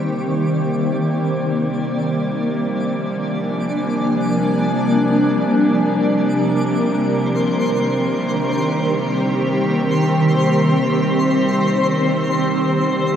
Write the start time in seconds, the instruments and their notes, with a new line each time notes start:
Already playing: synth drone C3 G3, ambient pad D#3 A#3 C4 G4 C5, synth texture D5
1.48 ambient pad F3
1.75 ambient pad D4
1.93 ambient pad A#4 G#5
6.59 ambient pad D#3, synth texture C5
6.79 ambient pad G4
6.84 ambient pad C4
11.69 ambient pad D3
11.84 ambient pad G3
12.23 ambient pad C5
12.31 ambient pad F4